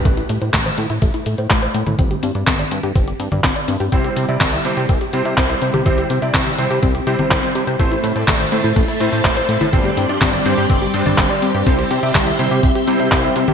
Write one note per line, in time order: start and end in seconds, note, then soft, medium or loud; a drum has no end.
0.05 0.23 A1 medium
0.05 0.10 A3 medium
0.05 kick loud
0.05 closed hi-hat medium
0.17 0.22 E4 medium
0.17 closed hi-hat soft
0.29 0.38 A2 medium
0.29 0.37 A3 medium
0.29 closed hi-hat medium
0.42 0.50 A2 medium
0.42 0.49 C5 medium
0.42 closed hi-hat soft
0.54 0.71 A1 loud
0.54 0.65 A3 medium
0.54 kick loud
0.54 clap loud
0.54 closed hi-hat medium
0.54 high conga medium
0.66 0.73 C5 medium
0.66 closed hi-hat soft
0.78 0.87 A2 loud
0.78 0.82 A3 medium
0.78 closed hi-hat medium
0.90 0.99 A2 medium
0.90 0.98 E4 medium
0.90 closed hi-hat soft
1.02 1.11 A1 medium
1.02 1.07 A3 loud
1.02 kick loud
1.02 closed hi-hat medium
1.14 1.19 E4 medium
1.14 closed hi-hat soft
1.26 1.35 A2 medium
1.26 1.34 A3 medium
1.26 closed hi-hat medium
1.38 1.47 A2 medium
1.38 1.46 C5 medium
1.38 closed hi-hat soft
1.50 1.68 A1 loud
1.50 1.62 A3 medium
1.50 kick loud
1.50 clap loud
1.50 closed hi-hat medium
1.62 1.70 C5 medium
1.62 closed hi-hat soft
1.75 1.83 A2 medium
1.75 1.79 A3 medium
1.75 closed hi-hat medium
1.87 1.96 A2 loud
1.87 1.94 E4 loud
1.87 closed hi-hat soft
1.87 high conga medium
1.99 2.16 G1 medium
1.99 2.03 C4 loud
1.99 kick loud
1.99 closed hi-hat medium
2.11 2.15 G4 medium
2.11 closed hi-hat soft
2.23 2.32 G2 medium
2.23 2.31 C4 medium
2.23 closed hi-hat medium
2.35 2.44 G2 medium
2.35 2.43 D5 medium
2.35 closed hi-hat soft
2.47 2.65 G1 loud
2.47 2.59 C4 medium
2.47 kick loud
2.47 clap loud
2.47 closed hi-hat medium
2.47 high conga medium
2.59 2.67 D5 medium
2.59 closed hi-hat soft
2.71 2.80 G2 loud
2.71 2.76 C4 medium
2.71 closed hi-hat medium
2.83 2.92 G2 medium
2.83 2.91 G4 loud
2.83 closed hi-hat soft
2.96 3.13 G1 medium
2.96 3.00 C4 loud
2.96 kick loud
2.96 closed hi-hat medium
3.08 3.12 G4 medium
3.08 closed hi-hat soft
3.20 3.29 G2 medium
3.20 3.27 C4 medium
3.20 closed hi-hat medium
3.32 3.41 G2 medium
3.32 3.40 D5 medium
3.32 closed hi-hat soft
3.32 high conga medium
3.44 3.53 G1 medium
3.44 3.55 C4 medium
3.44 kick loud
3.44 clap loud
3.44 closed hi-hat medium
3.56 3.64 D5 medium
3.56 closed hi-hat soft
3.68 3.77 G2 medium
3.68 3.73 C4 medium
3.68 closed hi-hat medium
3.80 3.89 G2 medium
3.80 3.88 G4 loud
3.80 closed hi-hat soft
3.92 4.10 C2 medium
3.92 4.26 G3 medium
3.92 3.97 C4 loud
3.92 4.26 C4 medium
3.92 4.26 E4 medium
3.92 4.26 C5 medium
3.92 kick loud
3.92 closed hi-hat medium
4.04 4.09 G4 medium
4.04 closed hi-hat soft
4.16 4.25 C3 medium
4.16 4.24 C4 medium
4.16 closed hi-hat medium
4.29 4.37 C3 medium
4.29 4.62 G3 medium
4.29 4.62 C4 medium
4.29 4.62 E4 medium
4.29 4.62 D5 medium
4.29 4.36 E5 medium
4.29 closed hi-hat soft
4.41 4.58 C2 loud
4.41 4.52 C4 medium
4.41 kick loud
4.41 clap loud
4.41 closed hi-hat medium
4.41 high conga medium
4.53 4.60 E5 medium
4.53 closed hi-hat soft
4.65 4.74 C3 loud
4.65 4.84 G3 medium
4.65 4.84 C4 medium
4.65 4.70 C4 medium
4.65 4.84 E4 medium
4.65 4.84 C5 loud
4.65 closed hi-hat medium
4.77 4.86 C3 medium
4.77 4.85 G4 medium
4.77 closed hi-hat soft
4.89 4.98 C2 loud
4.89 4.94 C4 loud
4.89 kick loud
4.89 closed hi-hat medium
5.01 5.06 G4 medium
5.01 closed hi-hat soft
5.13 5.22 C3 medium
5.13 5.47 G3 medium
5.13 5.21 C4 medium
5.13 5.47 C4 medium
5.13 5.47 E4 medium
5.13 5.47 C5 loud
5.13 closed hi-hat medium
5.25 5.34 C3 medium
5.25 5.33 E5 medium
5.25 closed hi-hat soft
5.38 5.55 C2 loud
5.38 5.49 C4 medium
5.38 kick loud
5.38 clap loud
5.38 closed hi-hat medium
5.50 5.83 G3 medium
5.50 5.83 C4 medium
5.50 5.83 E4 medium
5.50 5.83 C5 medium
5.50 5.57 E5 medium
5.50 closed hi-hat soft
5.62 5.71 C3 loud
5.62 5.66 C4 medium
5.62 closed hi-hat medium
5.74 5.83 C3 loud
5.74 5.81 G4 loud
5.74 closed hi-hat soft
5.74 high conga medium
5.86 6.03 C2 medium
5.86 6.19 G3 medium
5.86 5.90 C4 loud
5.86 6.19 C4 medium
5.86 6.19 E4 medium
5.86 6.19 C5 medium
5.86 kick loud
5.86 closed hi-hat medium
5.98 6.03 G4 medium
5.98 closed hi-hat soft
6.10 6.19 C3 medium
6.10 6.18 C4 medium
6.10 closed hi-hat medium
6.22 6.31 C3 medium
6.22 6.56 G3 medium
6.22 6.56 C4 medium
6.22 6.56 E4 medium
6.22 6.56 D5 medium
6.22 6.30 E5 medium
6.22 closed hi-hat soft
6.34 6.52 C2 loud
6.34 6.46 C4 medium
6.34 kick loud
6.34 clap loud
6.34 closed hi-hat medium
6.34 high conga medium
6.46 6.54 E5 medium
6.46 closed hi-hat soft
6.58 6.67 C3 loud
6.58 6.77 G3 medium
6.58 6.77 C4 medium
6.58 6.63 C4 medium
6.58 6.77 E4 medium
6.58 6.77 C5 loud
6.58 closed hi-hat medium
6.71 6.79 C3 medium
6.71 6.78 G4 loud
6.71 closed hi-hat soft
6.83 7.00 C2 medium
6.83 6.87 C4 loud
6.83 kick loud
6.83 closed hi-hat medium
6.95 6.99 G4 medium
6.95 closed hi-hat soft
7.07 7.16 C3 medium
7.07 7.40 G3 medium
7.07 7.40 C4 medium
7.07 7.40 E4 medium
7.07 7.18 G4 loud
7.07 7.40 C5 loud
7.07 closed hi-hat medium
7.19 7.28 C3 medium
7.19 7.27 C4 medium
7.19 closed hi-hat soft
7.19 high conga medium
7.31 7.40 C2 medium
7.31 7.39 C5 medium
7.31 kick loud
7.31 clap loud
7.31 closed hi-hat medium
7.43 7.77 G3 medium
7.43 7.77 C4 medium
7.43 7.55 C4 medium
7.43 7.77 E4 medium
7.43 7.77 C5 medium
7.43 closed hi-hat soft
7.55 7.64 C3 medium
7.55 7.63 G4 medium
7.55 closed hi-hat medium
7.67 7.76 C3 medium
7.67 7.79 C5 medium
7.67 closed hi-hat soft
7.79 7.97 A1 medium
7.79 7.84 A3 loud
7.79 8.13 A3 medium
7.79 9.71 A3 medium
7.79 8.13 C4 medium
7.79 8.13 E4 medium
7.79 9.71 A4 medium
7.79 8.13 C5 medium
7.79 9.71 E5 medium
7.79 13.54 C6 medium
7.79 kick loud
7.79 closed hi-hat medium
7.92 7.96 E4 medium
7.92 closed hi-hat soft
8.04 8.12 A2 medium
8.04 8.11 A3 medium
8.04 closed hi-hat medium
8.16 8.25 A2 medium
8.16 8.49 A3 medium
8.16 8.49 C4 medium
8.16 8.49 E4 medium
8.16 8.23 C5 medium
8.16 8.49 D5 medium
8.16 closed hi-hat soft
8.28 8.45 A1 loud
8.28 8.39 A3 medium
8.28 kick loud
8.28 clap loud
8.28 closed hi-hat medium
8.28 high conga medium
8.40 8.48 C5 medium
8.40 closed hi-hat soft
8.52 8.61 A2 medium
8.52 8.71 A3 medium
8.52 8.57 A3 medium
8.52 8.71 C4 medium
8.52 8.71 E4 medium
8.52 8.71 C5 loud
8.52 closed hi-hat medium
8.64 8.73 A2 medium
8.64 8.72 E4 loud
8.64 closed hi-hat soft
8.76 8.85 A1 loud
8.76 8.81 A3 loud
8.76 kick loud
8.76 closed hi-hat medium
8.88 8.93 E4 medium
8.88 closed hi-hat soft
9.00 9.09 A2 medium
9.00 9.08 A3 medium
9.00 9.34 A3 medium
9.00 9.34 C4 medium
9.00 9.34 E4 medium
9.00 9.34 C5 loud
9.00 closed hi-hat medium
9.13 9.21 A2 medium
9.13 9.20 C5 medium
9.13 closed hi-hat soft
9.25 9.42 A1 loud
9.25 9.36 A3 medium
9.25 kick loud
9.25 clap loud
9.25 closed hi-hat medium
9.37 9.70 A3 medium
9.37 9.70 C4 medium
9.37 9.70 E4 medium
9.37 9.70 C5 medium
9.37 9.44 C5 medium
9.37 closed hi-hat soft
9.49 9.58 A2 medium
9.49 9.53 A3 medium
9.49 closed hi-hat medium
9.61 9.70 A2 loud
9.61 9.69 E4 loud
9.61 closed hi-hat soft
9.61 high conga medium
9.73 9.91 G1 medium
9.73 11.65 G3 medium
9.73 10.06 G3 medium
9.73 9.78 C4 loud
9.73 10.06 C4 medium
9.73 10.06 D4 medium
9.73 13.54 G4 medium
9.73 10.06 C5 medium
9.73 11.65 D5 medium
9.73 kick loud
9.73 closed hi-hat medium
9.85 9.90 G4 medium
9.85 closed hi-hat soft
9.97 10.06 G2 medium
9.97 10.05 C4 medium
9.97 closed hi-hat medium
10.09 10.18 G2 medium
10.09 10.43 G3 medium
10.09 10.43 C4 medium
10.09 10.43 D4 medium
10.09 10.17 D5 medium
10.09 10.43 D5 medium
10.09 closed hi-hat soft
10.21 10.39 G1 loud
10.21 10.33 C4 medium
10.21 kick loud
10.21 clap loud
10.21 closed hi-hat medium
10.21 high conga medium
10.33 10.41 D5 medium
10.33 closed hi-hat soft
10.46 10.54 G2 loud
10.46 10.65 G3 medium
10.46 10.50 C4 medium
10.46 10.65 C4 medium
10.46 10.65 D4 medium
10.46 10.65 C5 loud
10.46 closed hi-hat medium
10.58 10.67 G2 medium
10.58 10.65 G4 loud
10.58 closed hi-hat soft
10.70 10.87 G1 medium
10.70 10.74 C4 loud
10.70 kick loud
10.70 closed hi-hat medium
10.82 10.86 G4 medium
10.82 closed hi-hat soft
10.94 11.03 G2 medium
10.94 11.27 G3 medium
10.94 11.02 C4 medium
10.94 11.27 C4 medium
10.94 11.27 D4 medium
10.94 11.27 C5 loud
10.94 closed hi-hat medium
11.06 11.15 G2 medium
11.06 11.14 D5 medium
11.06 closed hi-hat soft
11.06 high conga medium
11.18 11.27 G1 medium
11.18 11.30 C4 medium
11.18 kick loud
11.18 clap loud
11.18 closed hi-hat medium
11.30 11.64 G3 medium
11.30 11.64 C4 medium
11.30 11.64 D4 medium
11.30 11.64 C5 medium
11.30 11.38 D5 medium
11.30 closed hi-hat soft
11.42 11.51 G2 medium
11.42 11.47 C4 medium
11.42 closed hi-hat medium
11.54 11.63 G2 medium
11.54 11.62 G4 loud
11.54 closed hi-hat soft
11.67 11.84 C2 medium
11.67 12.00 G3 medium
11.67 11.71 C4 loud
11.67 12.00 C4 medium
11.67 13.54 C4 medium
11.67 12.00 E4 medium
11.67 12.00 C5 medium
11.67 13.54 E5 medium
11.67 kick loud
11.67 closed hi-hat medium
11.79 11.83 G4 medium
11.79 closed hi-hat soft
11.91 12.00 C3 medium
11.91 11.98 C4 medium
11.91 closed hi-hat medium
12.03 12.12 C3 medium
12.03 12.36 G3 medium
12.03 12.36 C4 medium
12.03 12.36 E4 medium
12.03 12.36 D5 medium
12.03 12.11 E5 medium
12.03 closed hi-hat soft
12.15 12.32 C2 loud
12.15 12.26 C4 medium
12.15 kick medium
12.15 clap loud
12.15 closed hi-hat medium
12.15 high conga medium
12.27 12.35 E5 medium
12.27 closed hi-hat soft
12.39 12.48 C3 loud
12.39 12.58 G3 medium
12.39 12.58 C4 medium
12.39 12.44 C4 medium
12.39 12.58 E4 medium
12.39 12.58 C5 loud
12.39 closed hi-hat medium
12.51 12.60 C3 medium
12.51 12.59 G4 loud
12.51 closed hi-hat soft
12.63 12.72 C2 medium
12.63 12.68 C4 loud
12.63 kick loud
12.63 closed hi-hat medium
12.75 12.80 G4 medium
12.75 closed hi-hat soft
12.87 12.96 C3 medium
12.87 13.21 G3 medium
12.87 13.21 C4 medium
12.87 12.95 C4 medium
12.87 13.21 E4 medium
12.87 13.21 C5 loud
12.87 closed hi-hat medium
12.99 13.08 C3 medium
12.99 13.07 E5 medium
12.99 closed hi-hat soft
13.12 13.29 C2 loud
13.12 13.23 C4 medium
13.12 kick loud
13.12 clap loud
13.12 closed hi-hat medium
13.24 13.54 G3 medium
13.24 13.54 C4 medium
13.24 13.54 E4 medium
13.24 13.54 C5 medium
13.24 13.31 E5 medium
13.24 closed hi-hat soft
13.36 13.45 C3 medium
13.36 13.41 C4 medium
13.36 closed hi-hat medium
13.48 13.54 C3 loud
13.48 13.54 G4 loud
13.48 closed hi-hat soft
13.48 high conga medium